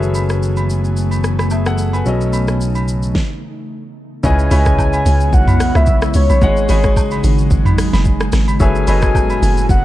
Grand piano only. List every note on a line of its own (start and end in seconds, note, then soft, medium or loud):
0.00 2.01 F#3 medium
0.00 2.01 C#4 medium
0.00 1.48 G#4 medium
0.00 1.48 A4 medium
0.00 1.49 B4 medium
0.00 1.49 E5 medium
1.52 1.66 G#4 medium
1.52 1.66 E5 medium
1.67 1.93 A4 medium
1.67 1.92 F#5 medium
1.94 2.20 B4 medium
1.94 2.20 G#5 medium
2.04 3.12 B2 medium
2.04 3.12 F#3 medium
2.04 3.13 C#4 medium
2.04 3.14 A4 medium
2.08 3.14 D#5 medium
4.23 4.46 C#3 medium
4.23 4.46 C#4 medium
4.23 4.46 E4 medium
4.23 4.47 B4 medium
4.23 4.47 D#5 medium
4.51 5.39 C#3 medium
4.51 5.39 C#4 medium
4.51 5.39 E4 medium
4.51 5.40 B4 medium
4.51 4.59 C#5 medium
4.59 5.43 D#5 medium
6.41 6.64 G#3 medium
6.41 6.64 G#4 medium
6.41 6.65 C#5 medium
6.41 6.65 D#5 medium
6.41 6.65 F#5 medium
6.69 7.57 G#3 medium
6.69 7.57 G#4 medium
6.69 7.57 C#5 medium
6.69 7.58 D#5 medium
6.69 7.58 G#5 medium
8.60 8.82 F#3 medium
8.60 8.83 C#4 medium
8.60 8.83 G#4 medium
8.60 8.83 A4 medium
8.60 8.83 B4 medium
8.60 8.83 E5 medium
8.87 9.75 F#3 medium
8.87 9.75 C#4 medium
8.87 9.76 G#4 medium
8.87 9.76 A4 medium
8.87 9.76 B4 medium
8.87 9.76 D#5 medium